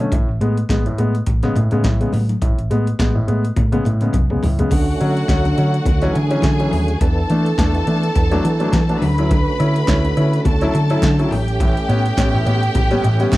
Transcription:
0.00 grand piano D3 A3 C#4, closed hi-hat
0.12 fingered electric bass A1, grand piano A2, kick, closed hi-hat, muted conga
0.28 fingered electric bass A1
0.41 fingered electric bass A2, grand piano G#3 B3, closed hi-hat
0.57 closed hi-hat
0.69 fingered electric bass A1, grand piano G#3 B3, kick, snare, closed hi-hat, high conga
0.86 grand piano A2, closed hi-hat
0.98 fingered electric bass A2, grand piano G#3 B3, closed hi-hat
1.15 closed hi-hat
1.26 fingered electric bass A1, kick, closed hi-hat, muted conga
1.43 grand piano C#3 G#3 B3, snare, closed hi-hat
1.56 fingered electric bass A2, grand piano A2, closed hi-hat, muted conga
1.71 fingered electric bass A2, grand piano C#3 G#3 B3, closed hi-hat
1.84 fingered electric bass A1, grand piano A2, kick, snare, closed hi-hat, high conga
2.01 grand piano C#3 G#3 B3, closed hi-hat
2.13 fingered electric bass A2, grand piano G#3 B3, open hi-hat, high conga
2.29 closed hi-hat, high conga
2.42 fingered electric bass A1, grand piano A2, kick, closed hi-hat, muted conga
2.58 fingered electric bass A1, closed hi-hat
2.71 fingered electric bass A2, grand piano G#3 B3, closed hi-hat
2.87 closed hi-hat
2.99 fingered electric bass A1, grand piano G#3 B3, kick, snare, closed hi-hat, high conga
3.15 grand piano A2
3.27 fingered electric bass A2, grand piano G#3 B3, closed hi-hat
3.45 closed hi-hat
3.56 fingered electric bass A2, kick, closed hi-hat, high tom, muted conga, low conga
3.72 grand piano C#3 G#3 B3, closed hi-hat, high tom
3.85 grand piano A2, fingered electric bass A2, closed hi-hat, mid tom, muted conga
4.01 grand piano C#3 G#3 B3, closed hi-hat, mid tom
4.13 fingered electric bass C2, kick, closed hi-hat, mid tom, high conga
4.30 grand piano C#3 G#3 B3, mid tom
4.43 fingered electric bass C#2, grand piano A2, floor tom, open hi-hat, high conga
4.59 grand piano C#3 G#3 B3, closed hi-hat, floor tom, high conga
4.71 fingered electric bass D2, tonewheel organ D3 A3 C#4 F#4, grand piano D3, string section F#4 F#5, kick, closed hi-hat, crash, muted conga
5.00 fingered electric bass D3, grand piano F#3 C#4, closed hi-hat
5.17 closed hi-hat
5.28 fingered electric bass D2, grand piano F#3 C#4, kick, snare, closed hi-hat, high conga
5.45 grand piano D3, closed hi-hat
5.57 fingered electric bass D3, grand piano F#3 C#4, closed hi-hat
5.74 closed hi-hat
5.85 fingered electric bass D2, kick, closed hi-hat, muted conga, low conga
6.02 grand piano E3 F#3 C#4, snare, closed hi-hat
6.14 grand piano D3, fingered electric bass D3, string section G#4 G#5, closed hi-hat
6.31 grand piano E3 F#3 C#4, closed hi-hat
6.42 fingered electric bass D3, grand piano D3, kick, snare, closed hi-hat, high conga
6.60 grand piano E3 F#3 C#4, closed hi-hat
6.71 fingered electric bass D#2, grand piano F#3 C#4, open hi-hat, high conga
6.88 closed hi-hat
7.01 fingered electric bass E2, tonewheel organ E3 B3 D4 A4, grand piano E3, string section A4 A5, kick, closed hi-hat, muted conga
7.30 fingered electric bass E3, grand piano A3 D4, closed hi-hat
7.46 closed hi-hat
7.58 fingered electric bass E2, grand piano A3 D4, kick, snare, closed hi-hat, high conga
7.75 grand piano E3, closed hi-hat
7.87 fingered electric bass E3, grand piano A3 D4, closed hi-hat
8.03 closed hi-hat
8.15 fingered electric bass E2, kick, closed hi-hat, muted conga
8.31 grand piano F#3 A3 D4, snare, closed hi-hat
8.44 grand piano E3, fingered electric bass E3, closed hi-hat
8.60 grand piano F#3 A3 D4, closed hi-hat
8.72 fingered electric bass E3, kick, snare, closed hi-hat, high conga
8.89 grand piano F#3 A3 D4, closed hi-hat
9.01 fingered electric bass D2, tonewheel organ D3 A3 C#4 F#4, grand piano D3, string section B4 B5, open hi-hat, high conga
9.18 grand piano F#3 C#4 E4, closed hi-hat
9.31 grand piano D3, kick, closed hi-hat, muted conga
9.59 fingered electric bass D3, grand piano C#4 E4, closed hi-hat
9.76 closed hi-hat
9.87 fingered electric bass D2, grand piano C#4 E4, kick, snare, clap, closed hi-hat, high conga
10.05 grand piano D3, closed hi-hat
10.17 fingered electric bass D3, grand piano C#4 E4, closed hi-hat
10.33 closed hi-hat
10.45 fingered electric bass D2, string section A4 A5, kick, closed hi-hat, muted conga, low conga
10.61 grand piano F#3 C#4 E4, snare, closed hi-hat
10.74 fingered electric bass D3, grand piano D3, closed hi-hat, muted conga
10.90 grand piano F#3 C#4 E4, closed hi-hat
11.02 grand piano D3, fingered electric bass D3, kick, snare, clap, closed hi-hat, high conga
11.19 grand piano F#3 C#4 E4, closed hi-hat
11.31 fingered electric bass A1, tonewheel organ A3 G4, grand piano B3 C#4, string section G4 G5, open hi-hat, high conga
11.48 closed hi-hat
11.60 grand piano A2 E3, kick, closed hi-hat, muted conga
11.77 closed hi-hat
11.88 fingered electric bass A2, grand piano B3 C#4, closed hi-hat
12.06 closed hi-hat
12.17 fingered electric bass A1, grand piano B3 C#4, kick, snare, clap, closed hi-hat, high conga
12.33 grand piano A2 E3
12.45 fingered electric bass A2, grand piano B3 C#4, closed hi-hat
12.63 closed hi-hat
12.75 fingered electric bass A1, kick, closed hi-hat, muted conga, low conga
12.91 grand piano G3 B3 C#4, snare, closed hi-hat
13.04 fingered electric bass A2, grand piano A2 E3, closed hi-hat, muted conga
13.20 grand piano G3 B3 C#4, closed hi-hat
13.32 fingered electric bass A2, kick, snare, clap, closed hi-hat, high conga

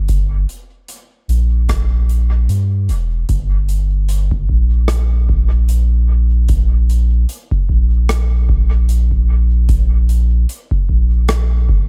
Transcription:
Already playing: sub bass G1
0.08 kick, closed hi-hat
0.49 closed hi-hat
0.88 closed hi-hat
1.28 sub bass A#1, closed hi-hat
1.69 kick, cross-stick, closed hi-hat
2.09 closed hi-hat
2.49 sub bass G2, closed hi-hat
2.88 sub bass E1, closed hi-hat
3.29 sub bass G1, kick, closed hi-hat
3.69 closed hi-hat
4.09 closed hi-hat
4.31 kick
4.49 sub bass A#1, kick
4.88 cross-stick, closed hi-hat
5.29 kick
5.69 closed hi-hat
6.49 kick, closed hi-hat
6.90 closed hi-hat
7.29 closed hi-hat
7.51 kick
7.69 sub bass A#1, kick
8.09 cross-stick, closed hi-hat
8.49 kick
8.89 closed hi-hat
9.11 kick
9.69 kick, closed hi-hat
10.09 closed hi-hat
10.49 closed hi-hat
10.71 kick
10.89 sub bass A#1, kick
11.28 cross-stick, closed hi-hat
11.69 sub bass G1, kick

